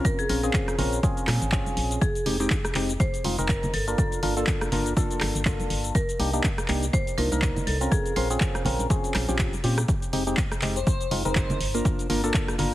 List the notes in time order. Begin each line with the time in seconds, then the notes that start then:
Already playing: C4 C#4 F4 A#4
0.05 A#4, kick, closed hi-hat, shaker
0.19 G#4, closed hi-hat, shaker
0.29 A#1 C4 C#4 F4 A#4, open hi-hat
0.43 C4 C#4 F4 G#4, closed hi-hat, shaker
0.54 C5, kick, clap, closed hi-hat, shaker
0.68 cross-stick, closed hi-hat, shaker
0.78 A#1 C4 C#4 F4 A#4, open hi-hat, low conga
0.93 closed hi-hat, shaker
1.03 C4 C#4 F4 G#4, kick, closed hi-hat, shaker
1.17 closed hi-hat, shaker
1.27 A#2, cross-stick, clap, open hi-hat, high conga
1.42 G#1, closed hi-hat, shaker
1.52 C4 C#4 F4 G#4, kick, clap, closed hi-hat, shaker
1.66 closed hi-hat, high conga, shaker
1.77 A#1, open hi-hat
1.91 closed hi-hat, shaker
2.01 G#4, kick, closed hi-hat, shaker
2.15 closed hi-hat, shaker
2.26 F1 G#3 C4 D#4 G4, open hi-hat
2.40 G#3 C4 D#4 G4, closed hi-hat, shaker
2.50 kick, clap, closed hi-hat, shaker
2.65 cross-stick, closed hi-hat, shaker
2.75 F1 G#3 C4 D#4 G4, clap, open hi-hat
2.89 closed hi-hat, shaker
3.00 C5, kick, closed hi-hat, shaker
3.14 closed hi-hat, shaker
3.24 F1 G#3 C4 D#4 F4, open hi-hat, high conga
3.38 F1 G#3 C4 D#4 A#4, closed hi-hat, shaker
3.49 A#4, kick, clap, closed hi-hat, shaker
3.63 closed hi-hat, high conga, low conga, shaker
3.74 G1 A4, open hi-hat
3.87 A#3 D4 F4 A#4, closed hi-hat, shaker
3.98 A4, kick, closed hi-hat, shaker
4.12 closed hi-hat, shaker
4.23 G1 A#3 D4 F4 A#4, open hi-hat
4.37 A#3 D4 F4 A4, closed hi-hat, shaker
4.47 kick, clap, closed hi-hat, shaker
4.61 cross-stick, closed hi-hat, shaker
4.72 G1 A#3 D4 F4 A#4, open hi-hat, low conga
4.86 closed hi-hat, shaker
4.96 A#3 D4 F4 A4, kick, closed hi-hat, shaker
5.11 closed hi-hat, shaker
5.21 G1, cross-stick, clap, open hi-hat, high conga
5.35 G1, closed hi-hat, shaker
5.45 A#3 D4 F4 A4, kick, clap, closed hi-hat, shaker
5.60 closed hi-hat, high conga, shaker
5.70 G1, open hi-hat
5.84 closed hi-hat, shaker
5.95 A#4, kick, closed hi-hat, shaker
6.09 closed hi-hat, shaker
6.19 C2 A#3 D4 D#4 G4, open hi-hat
6.33 A#3 D4 D#4 G4, closed hi-hat, shaker
6.44 kick, clap, closed hi-hat, shaker
6.58 cross-stick, closed hi-hat, shaker
6.68 C2 A#3 D4 D#4 G4, clap, open hi-hat
6.83 closed hi-hat, shaker
6.93 C5, kick, closed hi-hat, shaker
7.07 closed hi-hat, shaker
7.18 C2 A#3 D4 D#4 F4 A#4, open hi-hat, high conga
7.32 C2 A#3 D4 D#4 A#4, closed hi-hat, shaker
7.42 kick, clap, closed hi-hat, shaker
7.56 closed hi-hat, high conga, low conga, shaker
7.67 C2 A4, open hi-hat
7.81 C4 C#4 F4 A#4, closed hi-hat, shaker
7.92 G#4, kick, closed hi-hat, shaker
8.06 closed hi-hat, shaker
8.16 A#1 C4 C#4 F4 A#4 C5, open hi-hat
8.30 C4 C#4 F4 G#4, closed hi-hat, shaker
8.40 kick, clap, closed hi-hat, shaker
8.55 cross-stick, closed hi-hat, shaker
8.65 A#1 C4 C#4 F4 A#4, open hi-hat, low conga
8.79 closed hi-hat, high conga, shaker
8.90 C4 C#4 F4 G#4, kick, closed hi-hat, shaker
9.04 closed hi-hat, shaker
9.14 A#1, cross-stick, clap, open hi-hat, high conga
9.28 A#1 C4 C#4 F4 G4, closed hi-hat, shaker
9.39 kick, clap, closed hi-hat, shaker
9.53 closed hi-hat, high conga, shaker
9.64 A#2 C4 C#4 F4 G4, open hi-hat
9.78 cross-stick, closed hi-hat, shaker
9.88 kick, closed hi-hat, shaker
10.02 closed hi-hat, shaker
10.13 F1 G#3 C4 D#4 G4, open hi-hat
10.27 G#3 C4 D#4 G4, closed hi-hat, shaker
10.37 kick, clap, closed hi-hat, shaker
10.52 cross-stick, closed hi-hat, shaker
10.62 F1 G#3 C4 D#4 G4, clap, open hi-hat
10.76 C5, closed hi-hat, shaker
10.87 C5, kick, closed hi-hat, shaker
11.01 closed hi-hat, shaker
11.11 F1 G#3 C4 D#4 F4, open hi-hat, high conga
11.25 F1 G#3 C4 D#4 A#4 C5, closed hi-hat, shaker
11.35 kick, clap, closed hi-hat, shaker
11.49 closed hi-hat, high conga, low conga, shaker
11.60 G1, open hi-hat
11.74 A#3 D4 F4 A#4, closed hi-hat, shaker
11.85 kick, closed hi-hat, shaker
11.99 closed hi-hat, shaker
12.09 G1 A#3 D4 F4 A#4, open hi-hat
12.23 A#3 D4 F4 A4, closed hi-hat, shaker
12.34 kick, clap, closed hi-hat, shaker
12.48 cross-stick, closed hi-hat, shaker
12.58 G1 A#3 D4 F4 A#4, open hi-hat, low conga